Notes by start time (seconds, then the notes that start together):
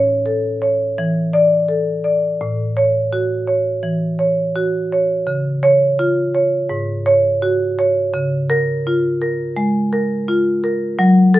Already playing: A2 C#5
0.26 A4
0.62 C#5
0.98 E3
1.33 D5
1.69 A4
2.04 D5
2.41 A2
2.77 C#5
3.13 F#4
3.47 C#5
3.83 E3
4.19 C#5
4.56 F#4
4.92 C#5
5.27 C#3
5.63 C#5
5.99 F4
6.35 C#5
6.70 G#2
7.06 C#5
7.42 F#4
7.79 C#5
8.14 C#3
8.50 A#4
8.87 F4
9.22 A#4
9.57 G#3
9.93 A#4
10.28 F4
10.64 A#4
10.99 F#3
11.34 A4